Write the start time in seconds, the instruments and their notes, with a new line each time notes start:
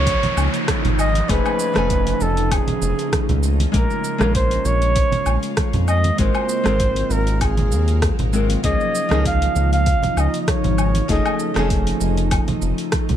Already playing: analog synth bass C#2, ambient pad C#3 F3 A#3 D#4, nylon-string guitar F3 A#3 C#4 D#4 G#4, flugelhorn C#5, downlifter
0.07 kick, open hi-hat, shaker
0.23 open hi-hat, high conga, low conga, shaker
0.37 analog synth bass C#2, low woodblock, shaker
0.54 open hi-hat, shaker
0.68 kick, cross-stick, open hi-hat, high conga, shaker
0.85 analog synth bass G#1, open hi-hat, low conga, shaker
0.99 flugelhorn D#5, low woodblock, shaker
1.14 open hi-hat, high conga, shaker
1.28 analog synth bass F1, nylon-string guitar F3 A3 C#4 D#4 G#4, ambient pad F3 A3, flugelhorn B4, kick, open hi-hat, shaker
1.46 low woodblock, shaker
1.59 shaker
1.74 analog synth bass F1, nylon-string guitar F3 A3 C#4 D#4, cross-stick, open hi-hat, high conga, shaker
1.78 nylon-string guitar G#5
1.90 kick, open hi-hat, shaker
2.07 open hi-hat, shaker
2.21 analog synth bass F1, flugelhorn A4, shaker
2.37 open hi-hat, shaker
2.52 flugelhorn G#4, kick, open hi-hat, low woodblock, shaker
2.68 open hi-hat, high conga, low conga, shaker
2.82 analog synth bass F1, shaker
2.99 open hi-hat, shaker
3.12 kick, cross-stick, open hi-hat, high conga, shaker
3.29 analog synth bass C#2, open hi-hat, low conga, shaker
3.43 shaker
3.60 open hi-hat, high conga, shaker
3.72 analog synth bass A#1, nylon-string guitar G#3 A#3 C#4 F4 A#4, ambient pad G#3 A#3 F4, flugelhorn A#4, kick, open hi-hat, shaker
3.90 shaker
4.04 shaker
4.18 analog synth bass A#1, nylon-string guitar G#3 A#3 C#4 F4, cross-stick, high conga, shaker
4.23 nylon-string guitar A#4
4.35 flugelhorn C5, kick, open hi-hat, shaker
4.51 open hi-hat, shaker
4.65 analog synth bass A#1, flugelhorn C#5, high conga, shaker
4.82 open hi-hat, shaker
4.96 kick, open hi-hat, shaker
5.12 open hi-hat, high conga, low conga, shaker
5.26 analog synth bass A#1, low woodblock, shaker
5.43 open hi-hat, shaker
5.57 kick, cross-stick, open hi-hat, high conga, shaker
5.73 analog synth bass F2, open hi-hat, low conga, shaker
5.88 flugelhorn D#5, low woodblock, shaker
6.04 open hi-hat, high conga, shaker
6.18 analog synth bass G#1, ambient pad C3 F#3 F5, nylon-string guitar G#3 C4 F4 F#4 A#4, flugelhorn C5, kick, open hi-hat, shaker
6.35 low woodblock, shaker
6.49 shaker
6.64 analog synth bass G#1, nylon-string guitar G#3 C4 F4 F#4, cross-stick, open hi-hat, high conga, shaker
6.68 nylon-string guitar A#4
6.80 kick, open hi-hat, shaker
6.96 open hi-hat, shaker
7.10 analog synth bass G#1, flugelhorn A#4, shaker
7.27 open hi-hat, shaker
7.41 flugelhorn G#4, kick, open hi-hat, low woodblock, shaker
7.57 open hi-hat, high conga, low conga, shaker
7.72 analog synth bass D#2, shaker
7.88 open hi-hat, shaker
8.02 kick, cross-stick, open hi-hat, high conga, shaker
8.19 analog synth bass G#1, open hi-hat, low conga, shaker
8.33 nylon-string guitar G#3 C4 F4 F#4 A#4, shaker
8.50 open hi-hat, high conga, shaker
8.63 analog synth bass C#2, ambient pad C#3 F3 D#4, nylon-string guitar F3 A#3 C#4 D#4 G#4, flugelhorn D#5, kick, open hi-hat, shaker
8.81 shaker
8.95 shaker
9.09 analog synth bass C#2, nylon-string guitar F3 A#3 C#4 D#4, cross-stick, high conga, shaker
9.13 nylon-string guitar G#4
9.25 flugelhorn F5, kick, open hi-hat, shaker
9.42 open hi-hat, shaker
9.56 analog synth bass C#2, high conga, shaker
9.73 flugelhorn F5, open hi-hat, shaker
9.86 kick, open hi-hat, shaker
10.03 open hi-hat, high conga, low conga, shaker
10.17 analog synth bass C#2, flugelhorn D#5, low woodblock, shaker
10.34 open hi-hat, shaker
10.42 flugelhorn D#5
10.48 flugelhorn C#5, kick, cross-stick, open hi-hat, high conga, shaker
10.64 analog synth bass G#1, open hi-hat, low conga, shaker
10.78 low woodblock, shaker
10.95 open hi-hat, high conga, shaker
11.08 analog synth bass F1, nylon-string guitar F3 A3 C#4 D#4 G#4, ambient pad F3 A3, flugelhorn D#5, kick, open hi-hat, shaker
11.26 low woodblock, shaker
11.39 shaker
11.54 analog synth bass F1, nylon-string guitar F3 A3 C#4 D#4, cross-stick, open hi-hat, high conga, shaker
11.59 nylon-string guitar G#4
11.70 kick, open hi-hat, shaker
11.87 open hi-hat, shaker
12.01 analog synth bass F1, shaker
12.18 open hi-hat, shaker
12.31 kick, open hi-hat, low woodblock, shaker
12.48 open hi-hat, high conga, low conga, shaker
12.62 analog synth bass F1, shaker
12.78 open hi-hat, shaker
12.92 kick, cross-stick, open hi-hat, high conga, shaker
13.09 analog synth bass C#2, open hi-hat, low conga, shaker